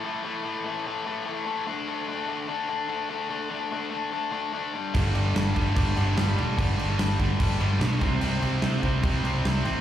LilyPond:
<<
  \new Staff \with { instrumentName = "Overdriven electric guitar" } { \clef bass \time 4/4 \key g \mixolydian \tempo 4 = 147 <a, e a>8 <a, e a>8 <a, e a>8 <a, e a>8 <a, e a>8 <a, e a>8 <a, e a>8 <a, e a>8 | <d a d'>8 <d a d'>8 <d a d'>8 <d a d'>8 <d a d'>8 <d a d'>8 <d a d'>8 <d a d'>8 | <d a d'>8 <d a d'>8 <d a d'>8 <d a d'>8 <d a d'>8 <d a d'>8 <d a d'>8 <g, d g>8 | <g, d g>8 <g, d g>8 <g, d g>8 <g, d g>8 <g, d g>8 <g, d g>8 <g, d g>8 <g, d g>8 |
<g, d g>8 <g, d g>8 <g, d g>8 <g, d g>8 <g, d g>8 <g, d g>8 <g, d g>8 <c g c'>8 | <c g c'>8 <c g c'>8 <c g c'>8 <c g c'>8 <c g c'>8 <c g c'>8 <c g c'>8 <c g c'>8 | }
  \new Staff \with { instrumentName = "Distorted electric guitar" } { \clef bass \time 4/4 \key g \mixolydian r1 | r1 | r1 | <g, d g>2~ <g, d g>8 <g, d g>8 <g, d g>4 |
<g, d g>2~ <g, d g>8 <g, d g>8 <g, d g>8 <c g c'>8~ | <c g c'>2 <c g c'>8 <c g c'>4 r8 | }
  \new Staff \with { instrumentName = "Overdriven electric guitar" } { \clef bass \time 4/4 \key g \mixolydian r1 | r1 | r1 | <g, d g>8 <g, d g>8 <g, d g>8 <g, d g>8 <g, d g>8 <g, d g>8 <g, d g>8 <g, d g>8 |
<g, d g>8 <g, d g>8 <g, d g>8 <g, d g>8 <g, d g>8 <g, d g>8 <g, d g>8 <c g c'>8 | <c g c'>8 <c g c'>8 <c g c'>8 <c g c'>8 <c g c'>8 <c g c'>8 <c g c'>8 <c g c'>8 | }
  \new Staff \with { instrumentName = "Picked electric bass" } { \clef bass \time 4/4 \key g \mixolydian r1 | r1 | r1 | g,,8 g,,8 g,,8 g,,8 g,,8 g,,8 g,,8 e,,8 |
g,,8 g,,8 g,,8 g,,8 g,,8 g,,8 b,,8 c,8 | c,8 c,8 c,8 c,8 c,8 c,8 c,8 a,,8 | }
  \new DrumStaff \with { instrumentName = "Drums" } \drummode { \time 4/4 r4 r4 r4 r4 | r4 r4 r4 r4 | r4 r4 r4 r4 | <cymc bd>8 cymc8 <cymc sn>8 <cymc bd>8 <cymc bd>8 cymc8 <cymc sn>8 cymc8 |
<cymc bd>8 cymc8 <cymc sn>8 <cymc bd>8 <cymc bd>8 cymc8 <cymc sn>8 <cymc bd>8 | cymc8 cymc8 <cymc sn>16 sn16 <cymc bd>8 <cymc bd>8 cymc8 <cymc sn>8 cymc8 | }
>>